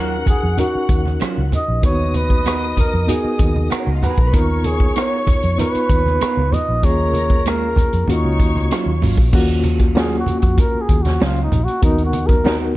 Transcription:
Already playing: D#2 F#3 C#4 D#4 F4 F#4 A#4 F#5 F#6
0.26 G#4, muted fingered electric bass stroke, kick, cross-stick, closed hi-hat, high conga, low conga
0.43 F2
0.57 C#4 D#4 F#4 A#4, closed hi-hat, muted conga, low conga
0.75 muted fingered electric bass stroke
0.89 D#2, kick, closed hi-hat, muted conga
1.05 cross-stick, high conga
1.20 F#3 C#4 F4, muted fingered electric bass stroke, cross-stick, closed hi-hat, muted conga
1.38 C#2
1.52 D#5, closed hi-hat, high conga, low conga
1.68 A#1
1.83 D#2 B3 D#4 F#4 B4 C#5 D#5 D#6, kick, closed hi-hat
2.14 B4, closed hi-hat, muted conga, high conga
2.30 kick
2.46 B3 F#4 A#4, cross-stick, closed hi-hat, muted conga
2.77 A#4, muted fingered electric bass stroke, kick, closed hi-hat, muted conga, high conga, low conga
2.94 F2
3.07 B3 D#4 F#4 G#4 A#4, closed hi-hat, muted conga, low conga
3.24 muted fingered electric bass stroke
3.39 D#2, kick, closed hi-hat
3.56 high conga
3.70 B3 F#4 A#4, muted fingered electric bass stroke, cross-stick, closed hi-hat
3.78 C#4 C#5
3.87 C#2 D#4 D#5
3.95 F4 F5
4.02 B3 F#4 A#4 B4 F#5, closed hi-hat, muted conga, high conga, low conga
4.11 G#4 G#5
4.18 A#1 A#4 A#5, kick
4.26 B4 B5
4.33 D#2 B3 D#4 F4 A#4 C#5 C#6, kick, closed hi-hat
4.64 G#4, closed hi-hat, high conga
4.80 kick
4.96 B3 F4 A#4 C#5, cross-stick, closed hi-hat, muted conga
5.27 muted fingered electric bass stroke, kick, closed hi-hat, muted conga, high conga, low conga
5.43 F2, closed hi-hat
5.58 B3 D#4 F4 B4, closed hi-hat, low conga
5.75 muted fingered electric bass stroke, closed hi-hat
5.89 D#2, kick, closed hi-hat, muted conga
6.06 cross-stick, high conga
6.21 B3 F4 A#4, muted fingered electric bass stroke, cross-stick, closed hi-hat, muted conga
6.37 C#2
6.52 D#5, closed hi-hat, muted conga, high conga, low conga
6.69 A#1
6.82 D#2 A#3 C#4 F4 G#4 A#4 C#5 A#5, kick, closed hi-hat, muted conga
7.13 closed hi-hat, high conga
7.30 kick
7.46 G#3 A#3 F4 A#4, cross-stick, closed hi-hat, muted conga
7.76 muted fingered electric bass stroke, kick, closed hi-hat, muted conga, high conga, low conga
7.93 F2, closed hi-hat
8.08 D#2 A#3 C#4 D#4 F4 F#4 C#5 C#6, closed hi-hat, muted conga, low conga
8.24 C#2
8.40 D#2, kick, closed hi-hat, muted conga
8.55 C#2, cross-stick, high conga
8.71 F#3 C#4 F4, cross-stick, closed hi-hat, muted conga
8.86 D#2
9.02 G#1 F#3 C#4 F4, open hi-hat, muted conga, high conga, low conga
9.18 A#1, kick
9.33 D#2 A#3 C#4 F4 F#4, kick, crash, muted conga
9.48 closed hi-hat
9.63 closed hi-hat, muted conga, high conga
9.79 kick, closed hi-hat
9.95 F#3 A#3 C#4 F4 F#4 G#4, snare, muted conga
10.19 F#4
10.26 muted fingered electric bass stroke, closed hi-hat, muted conga, high conga, low conga
10.41 F2 F#4, kick, closed hi-hat
10.58 A#4, kick, closed hi-hat, muted conga, low conga
10.75 muted fingered electric bass stroke
10.81 G#4
10.89 D#2, kick, closed hi-hat, high conga
11.02 F#4, closed hi-hat, high conga
11.06 snare
11.21 C#2 F#3 C#4 F4, snare, muted conga
11.36 closed hi-hat
11.43 D#4
11.52 A#1, closed hi-hat, muted conga, high conga, low conga
11.64 F#4, closed hi-hat
11.82 D#2 B3 D#4 F#4 A#4, kick, closed hi-hat
11.98 closed hi-hat
12.05 F#4
12.13 closed hi-hat, high conga
12.27 A#4, kick, closed hi-hat
12.44 B3 D#4 F#4 A#4, snare, muted conga

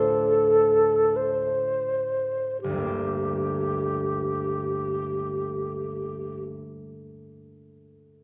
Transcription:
Already playing: D2 A2 D4 F4 A4 C5
1.16 C5
2.61 G1 G4
2.69 D2
2.73 G3
2.78 A#3 D4
2.86 G4

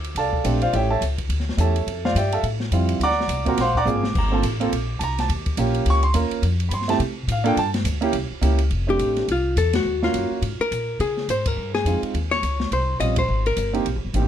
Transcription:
Already playing: D2
0.04 ride
0.15 C2 A4 D5 F5 A5, ride
0.33 kick
0.44 A#1 A3 C4 D4 G4, hi-hat pedal, ride
0.62 F4 C5 D5 F5, ride
0.72 A1 A3 C#4 E4 G4 C#5 E5 G5, ride
0.90 A4 C#5 E5 A5
1.01 C#2, hi-hat pedal, ride
1.18 kick, ride
1.29 D2, ride
1.40 snare
1.49 snare
1.57 E2 A3 C#4 E4 G4 A4 C#5 E5 A5, hi-hat pedal, ride
1.76 ride
1.87 F2, ride
2.05 F4 C5 D5 F5, snare
2.15 G2 G4 D5 E5 G5, hi-hat pedal, ride
2.32 A4 E5 F5 A5, ride
2.43 A2, ride
2.60 snare
2.71 F2 G3 C4 E4 F4, hi-hat pedal, ride
2.89 ride
3.00 D2 D6, ride
3.04 D5 F#5 A#5
3.11 snare
3.20 snare
3.28 C2, hi-hat pedal, ride
3.45 A#3 C4 F4 F#4 A#4 F5 F#5 A#5, kick, ride
3.57 A#1 C6, snare, ride
3.61 C5 F5 F#5
3.75 D5 F#5 A#5 D6, kick
3.85 G#1 A#3 C4 F4 G#4, floor tom, hi-hat pedal
4.04 snare
4.15 G1 A#5, kick, crash
4.32 A#3 C4 F4 A4 A5
4.43 A1, hi-hat pedal, ride
4.60 A#3 C4 F4 A4, ride
4.72 A#1, ride
4.99 C2 A5, hi-hat pedal, ride
5.03 A#5
5.18 A5, snare, ride
5.29 D#2, ride
5.46 kick, ride
5.57 A#1 A#3 C#4 F4 G4, hi-hat pedal, ride
5.74 ride
5.86 C#2, ride
5.90 C#6
6.03 C6, ride
6.14 D#2 A#3 C#4 F4 A#4, hi-hat pedal, ride
6.31 muted upright bass stroke, ride
6.42 F2, ride
6.60 ride
6.69 G2 B5, hi-hat pedal, ride
6.74 C6
6.81 snare
6.88 A3 C4 E4 G4 A5, snare, ride
6.99 C3, ride
7.27 A2, hi-hat pedal, ride
7.32 F5
7.44 A#3 D4 F4 A4 G5, ride
7.57 G2 A5, ride
7.74 snare, ride
7.84 D2, hi-hat pedal, ride
8.01 A#3 C#4 E4 G4, ride
8.13 C2, ride
8.30 muted upright bass stroke
8.41 C#2 A#3 C#4 E4 G4, hi-hat pedal, ride
8.59 ride
8.70 F1, ride
8.87 A3 C4 D4 G4
8.99 A1, hi-hat pedal, ride
9.17 snare, ride
9.28 C2 F4, ride
9.56 E2 A4, hi-hat pedal, ride
9.73 F#4, snare, ride
9.85 D#2
10.02 A#3 C#4 F4 F#4, snare
10.14 F#2, hi-hat pedal, ride
10.31 muted upright bass stroke
10.42 G#2, ride
10.59 A#4, muted upright bass stroke
10.71 A#2, hi-hat pedal, ride
10.99 C#3 G#4, ride
11.17 snare
11.28 G#2 C5, hi-hat pedal, ride
11.46 A#4, kick, ride
11.56 G2
11.75 G#4, snare
11.85 F2 G#3 C4 D#4 F4, hi-hat pedal, ride
12.02 muted upright bass stroke, ride
12.14 D#2, ride
12.31 C#5, snare
12.42 C#2, hi-hat pedal, ride
12.60 snare
12.71 C2 C5, ride
13.00 A#1 G3 C4 C#4 F4 D#5, hi-hat pedal, ride
13.16 C5, kick, ride
13.28 G#1
13.46 A#4, ride
13.56 G1, hi-hat pedal, ride
13.73 A#3 C4 D#4 G4, ride
13.85 A#1, ride
13.95 G#1
14.05 G1
14.13 G#1 A#3 C4 D#4 G4, hi-hat pedal, ride

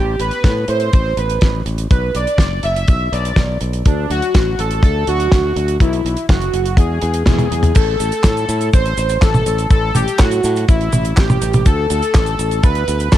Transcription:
Already playing: A1 G4
0.20 A1 B4, closed hi-hat
0.31 closed hi-hat
0.44 A2, kick, snare, closed hi-hat
0.68 A2 C5, closed hi-hat
0.80 closed hi-hat
0.93 A1 C5, kick, closed hi-hat
1.17 A1 B4, closed hi-hat
1.30 closed hi-hat
1.41 A1, kick, snare, closed hi-hat
1.66 A1, closed hi-hat
1.78 closed hi-hat
1.90 B1 B4, kick, closed hi-hat
2.15 B1 D5, closed hi-hat
2.27 closed hi-hat
2.38 F#1, kick, snare, closed hi-hat
2.63 F#1 E5, closed hi-hat
2.76 closed hi-hat
2.88 B1 E5, kick, closed hi-hat
3.12 B1 D5, closed hi-hat
3.25 closed hi-hat
3.36 B1, kick, snare, closed hi-hat
3.61 B1, closed hi-hat
3.73 closed hi-hat
3.85 D2 D4, kick, closed hi-hat
4.10 D2 F#4, closed hi-hat
4.22 closed hi-hat
4.34 A1, kick, snare, closed hi-hat
4.59 A1 A4, closed hi-hat
4.71 closed hi-hat
4.83 D2 A4, kick, closed hi-hat
5.07 D2 F#4, closed hi-hat
5.20 closed hi-hat
5.32 D2, kick, snare, closed hi-hat
5.56 D2, closed hi-hat
5.68 closed hi-hat
5.80 B1 E4, kick, closed hi-hat
5.93 closed hi-hat
6.05 B1, closed hi-hat
6.17 closed hi-hat
6.29 F#1 F#4, kick, snare, closed hi-hat
6.41 closed hi-hat
6.54 F#1, closed hi-hat
6.66 closed hi-hat
6.77 E2 G#4, kick, closed hi-hat
7.02 E2, closed hi-hat
7.14 closed hi-hat
7.26 E2 G#4, kick, snare, closed hi-hat, high tom
7.39 closed hi-hat, high tom
7.51 E2, closed hi-hat
7.63 closed hi-hat, mid tom
7.75 A1 A4, kick, closed hi-hat, crash, cabasa
8.00 A1, closed hi-hat, cabasa
8.12 closed hi-hat, cabasa
8.24 A2, kick, snare, clap, closed hi-hat, cabasa
8.37 closed hi-hat, cabasa
8.49 A2, closed hi-hat, cabasa
8.61 closed hi-hat, cabasa
8.73 A1 C5, kick, closed hi-hat, cabasa
8.86 closed hi-hat
8.97 A1, closed hi-hat, cabasa
9.09 closed hi-hat, cabasa
9.22 A1 A4, kick, snare, clap, closed hi-hat, cabasa
9.34 high tom, cabasa
9.46 A1, closed hi-hat, cabasa
9.58 closed hi-hat, cabasa
9.70 A1 A4, kick, closed hi-hat, cabasa
9.95 A1 G4, closed hi-hat, high tom, cabasa
10.08 closed hi-hat, cabasa
10.18 A2 F#4, kick, snare, clap, closed hi-hat, cabasa
10.31 closed hi-hat, cabasa
10.44 A2, closed hi-hat, cabasa
10.56 closed hi-hat, cabasa
10.68 A1 E4, kick, closed hi-hat, cabasa
10.81 closed hi-hat
10.93 A1, closed hi-hat, high tom, cabasa
11.05 closed hi-hat, cabasa
11.17 A1 G4, kick, snare, clap, closed hi-hat, cabasa
11.30 high tom, cabasa
11.42 A1, closed hi-hat, cabasa
11.53 closed hi-hat, high tom, cabasa
11.66 D2 A4, kick, closed hi-hat, cabasa
11.90 D2, closed hi-hat, cabasa
12.02 closed hi-hat, cabasa
12.14 A1, kick, snare, clap, closed hi-hat, cabasa
12.26 closed hi-hat, cabasa
12.39 A1, closed hi-hat, cabasa
12.51 closed hi-hat, cabasa
12.63 D2 B4, kick, closed hi-hat, cabasa
12.75 closed hi-hat
12.88 D2, closed hi-hat, cabasa
13.00 closed hi-hat, cabasa
13.12 D2 A4, kick, snare, clap, closed hi-hat, cabasa

